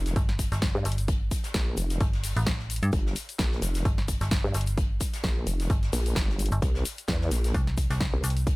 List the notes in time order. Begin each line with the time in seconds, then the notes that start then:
Already playing: F1, sub drop
0.06 snare, closed hi-hat, shaker
0.16 G1, kick, closed hi-hat, shaker
0.29 snare, closed hi-hat
0.39 kick, closed hi-hat, open hi-hat, shaker
0.52 G1, snare, closed hi-hat, shaker
0.62 kick, snare, closed hi-hat, shaker
0.75 G2, closed hi-hat
0.85 G1, snare, closed hi-hat, open hi-hat, shaker
0.92 closed hi-hat
0.98 closed hi-hat, shaker
1.08 kick, closed hi-hat, shaker
1.31 kick, closed hi-hat, open hi-hat, shaker
1.44 snare, closed hi-hat, shaker
1.54 A#1, kick, snare, closed hi-hat, shaker
1.77 F1, closed hi-hat, open hi-hat, shaker
1.90 snare, closed hi-hat, shaker
2.00 G1, kick, closed hi-hat, shaker
2.13 snare, closed hi-hat
2.23 snare, open hi-hat, shaker
2.37 A1, closed hi-hat, shaker
2.46 kick, snare, closed hi-hat, shaker
2.59 snare
2.70 closed hi-hat, open hi-hat, shaker
2.76 closed hi-hat
2.82 G2, closed hi-hat, shaker
2.92 G1, kick, closed hi-hat, shaker
3.06 snare
3.16 closed hi-hat, open hi-hat, shaker
3.29 closed hi-hat, shaker
3.38 A#1, kick, snare, closed hi-hat
3.52 snare
3.62 F1, snare, closed hi-hat, open hi-hat, shaker
3.74 snare, closed hi-hat, shaker
3.85 G1, kick, closed hi-hat, shaker
3.98 snare, closed hi-hat
4.08 kick, closed hi-hat, open hi-hat, shaker
4.21 G1, snare, closed hi-hat, shaker
4.31 kick, snare, closed hi-hat, shaker
4.44 G2, closed hi-hat
4.54 G1, snare, closed hi-hat, open hi-hat, shaker
4.61 closed hi-hat
4.66 closed hi-hat, shaker
4.78 kick, closed hi-hat, shaker
5.00 kick, closed hi-hat, open hi-hat, shaker
5.13 snare, closed hi-hat, shaker
5.23 A#1, kick, snare, closed hi-hat, shaker
5.47 F1, closed hi-hat, open hi-hat, shaker
5.60 snare, closed hi-hat, shaker
5.70 G1, kick, closed hi-hat, shaker
5.83 snare, closed hi-hat
5.92 A#1, snare, open hi-hat, shaker
6.06 closed hi-hat, shaker
6.15 G1, kick, snare, closed hi-hat, shaker
6.29 snare
6.39 closed hi-hat, open hi-hat, shaker
6.46 closed hi-hat
6.52 G1, closed hi-hat, shaker
6.62 C2, kick, closed hi-hat, shaker
6.75 snare
6.85 closed hi-hat, open hi-hat, shaker
6.98 closed hi-hat, shaker
7.08 E2, kick, snare, closed hi-hat, shaker
7.21 snare
7.31 A#1, snare, closed hi-hat, open hi-hat, shaker
7.44 snare, closed hi-hat, shaker
7.54 C2, kick, closed hi-hat, shaker
7.67 snare, closed hi-hat
7.77 kick, closed hi-hat, open hi-hat, shaker
7.90 C2, snare, closed hi-hat, shaker
8.00 kick, snare, closed hi-hat, shaker
8.13 C2, closed hi-hat
8.24 C2, snare, closed hi-hat, open hi-hat, shaker
8.30 closed hi-hat
8.37 closed hi-hat, shaker
8.47 kick, closed hi-hat, shaker